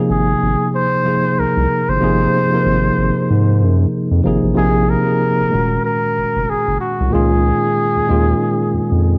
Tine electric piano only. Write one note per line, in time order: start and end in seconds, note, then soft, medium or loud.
0.00 1.04 C3 medium
0.00 1.04 F3 medium
0.00 1.06 A#3 medium
0.00 1.07 D#4 medium
0.00 1.08 G#4 loud
1.04 1.78 C3 medium
1.04 1.79 F3 medium
1.04 1.79 A#3 medium
1.04 1.80 D#4 medium
1.08 1.80 G#4 medium
2.00 2.37 C3 medium
2.00 2.38 F3 medium
2.00 2.38 A#3 medium
2.00 2.38 D#4 medium
2.04 2.39 G#4 loud
2.50 3.47 C3 medium
2.50 3.48 F3 medium
2.50 3.48 A#3 medium
2.50 3.49 D#4 medium
2.55 3.50 A#4 medium
4.23 4.48 C3 medium
4.23 4.49 F3 medium
4.23 4.50 A#3 medium
4.23 4.50 D#4 medium
4.27 4.51 G#4 medium
4.54 4.92 C3 medium
4.54 4.92 F3 medium
4.54 4.93 A#3 medium
4.54 4.93 D#4 medium
4.59 4.94 G#4 loud
5.04 5.50 C3 medium
5.04 5.51 F3 medium
5.04 5.51 A#3 medium
5.04 5.52 D#4 medium
5.09 5.53 G#4 medium
5.50 6.53 A#2 medium
5.50 6.54 D#3 medium
5.50 6.54 G#3 medium
5.50 6.55 C#4 medium
5.54 6.55 F#4 medium
7.10 7.85 A#2 medium
7.10 7.85 D#3 medium
7.10 7.86 G#3 medium
7.10 7.87 C#4 medium
7.15 7.87 F4 loud
8.07 9.10 A#2 medium
8.07 9.10 D#3 medium
8.07 9.11 G#3 medium
8.07 9.11 C#4 medium
8.07 9.12 F4 medium